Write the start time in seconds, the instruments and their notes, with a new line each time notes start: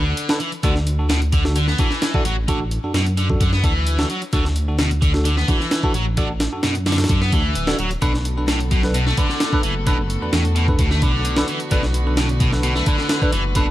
Already playing: detuned saw bass D2, distorted electric guitar D3
0.17 closed hi-hat
0.29 tine electric piano D4 A4 B4, snare
0.40 distorted electric guitar E3, closed hi-hat
0.52 closed hi-hat
0.63 detuned saw bass D2, distorted electric guitar D3, tine electric piano D4 F#4 A4, kick, closed hi-hat
0.76 snare
0.87 closed hi-hat
0.99 tine electric piano D4 F#4 A4
1.10 distorted electric guitar B2, snare, closed hi-hat
1.22 closed hi-hat
1.32 distorted electric guitar D3, kick, closed hi-hat
1.45 tine electric piano D4 F#4 A4, snare
1.56 distorted electric guitar D3, closed hi-hat
1.68 distorted electric guitar B3, snare
1.78 distorted electric guitar E3, tine electric piano D4 F#4 A4, kick, closed hi-hat
1.91 snare
2.02 snare, closed hi-hat
2.14 tine electric piano D4 F#4 A4, kick
2.25 detuned saw bass A1, distorted electric guitar F#3, closed hi-hat
2.48 distorted electric guitar D3, tine electric piano D4 F#4 A4, kick, closed hi-hat
2.71 closed hi-hat
2.84 detuned saw bass F#2, tine electric piano D4 F#4 A4
2.94 detuned saw bass F#2, distorted electric guitar B2, snare, closed hi-hat
3.06 closed hi-hat
3.17 distorted electric guitar D3, closed hi-hat
3.30 tine electric piano D4 F#4 A4, kick
3.40 detuned saw bass F#2, distorted electric guitar D3, kick, closed hi-hat
3.53 distorted electric guitar B3, snare
3.64 detuned saw bass D2, distorted electric guitar E3, tine electric piano D4 F#4 A4, kick, closed hi-hat
3.87 closed hi-hat
3.99 tine electric piano D4 F#4 A4, snare
4.10 distorted electric guitar F#3, closed hi-hat
4.22 closed hi-hat
4.33 detuned saw bass D2, distorted electric guitar D3, tine electric piano D4 F#4 A4, kick, closed hi-hat
4.45 snare
4.56 closed hi-hat
4.68 tine electric piano D4 F#4 A4
4.79 distorted electric guitar B2, snare, closed hi-hat
4.91 closed hi-hat
5.02 distorted electric guitar D3, kick, closed hi-hat
5.14 tine electric piano D4 F#4 A4, snare
5.25 distorted electric guitar D3, closed hi-hat
5.37 distorted electric guitar B3, snare
5.48 distorted electric guitar E3, tine electric piano D4 F#4 A4, kick, closed hi-hat
5.60 snare
5.71 snare, closed hi-hat
5.83 tine electric piano D4 F#4 A4, kick
5.94 detuned saw bass A1, distorted electric guitar F#3, closed hi-hat
6.17 distorted electric guitar D3, tine electric piano D4 F#4 A4, kick, closed hi-hat
6.40 snare, closed hi-hat
6.53 detuned saw bass F#2, tine electric piano D4 F#4 A4
6.63 detuned saw bass F#2, distorted electric guitar B2, snare, closed hi-hat
6.75 closed hi-hat
6.86 distorted electric guitar D3, snare, closed hi-hat
6.92 snare, closed hi-hat
6.98 tine electric piano D4 F#4 A4, snare, closed hi-hat
7.04 snare, closed hi-hat
7.09 detuned saw bass F#2, distorted electric guitar D3, kick, closed hi-hat
7.22 distorted electric guitar B3, snare
7.32 detuned saw bass D2, distorted electric guitar E3, tine electric piano D4 F#4 A4, kick, closed hi-hat
7.55 detuned saw bass D1, closed hi-hat
7.67 tine electric piano D4 F#4 A4, snare
7.79 detuned saw bass D1, distorted electric guitar F#3, closed hi-hat
7.91 closed hi-hat
8.02 detuned saw bass B1, distorted electric guitar B2, string section D3 A3 B3 F#4 A4, tine electric piano D4 A4 B4, kick, closed hi-hat
8.14 snare
8.25 closed hi-hat
8.38 tine electric piano D4 A4 B4
8.48 distorted electric guitar A2, snare, closed hi-hat
8.60 closed hi-hat
8.71 distorted electric guitar B2, kick, closed hi-hat
8.83 tine electric piano D4 A4 B4, snare
8.94 distorted electric guitar B2, closed hi-hat
9.06 distorted electric guitar A3, snare
9.17 distorted electric guitar D3, tine electric piano D4 A4 B4, kick, closed hi-hat
9.30 snare
9.40 snare, closed hi-hat
9.53 tine electric piano D4 A4 B4, kick
9.63 detuned saw bass F#1, distorted electric guitar E3, closed hi-hat
9.87 distorted electric guitar B2, tine electric piano D4 A4 B4, kick, closed hi-hat
10.10 closed hi-hat
10.22 detuned saw bass E2, tine electric piano D4 A4 B4
10.33 detuned saw bass E2, distorted electric guitar A2, snare, closed hi-hat
10.45 closed hi-hat
10.56 distorted electric guitar B2, closed hi-hat
10.68 tine electric piano D4 A4 B4, kick
10.79 detuned saw bass D2, distorted electric guitar B2, kick, closed hi-hat
10.91 distorted electric guitar A3, snare
11.02 detuned saw bass B1, distorted electric guitar D3, tine electric piano D4 A4 B4, kick, closed hi-hat
11.25 closed hi-hat
11.36 tine electric piano D4 A4 B4, snare
11.48 distorted electric guitar E3, closed hi-hat
11.60 closed hi-hat
11.71 detuned saw bass B1, distorted electric guitar B2, tine electric piano D4 A4 B4, string section B4, kick, closed hi-hat
11.83 snare
11.94 closed hi-hat
12.07 tine electric piano D4 A4 B4
12.17 distorted electric guitar A2, snare, closed hi-hat
12.29 closed hi-hat
12.40 distorted electric guitar B2, kick, closed hi-hat
12.52 tine electric piano D4 A4 B4, snare
12.63 distorted electric guitar B2, closed hi-hat
12.75 distorted electric guitar A3, snare
12.86 distorted electric guitar D3, tine electric piano D4 A4 B4, kick, closed hi-hat
12.98 snare
13.09 snare, closed hi-hat
13.22 tine electric piano D4 A4 B4, kick
13.32 detuned saw bass F#1, distorted electric guitar E3, closed hi-hat
13.55 distorted electric guitar B2, tine electric piano D4 A4 B4, kick, closed hi-hat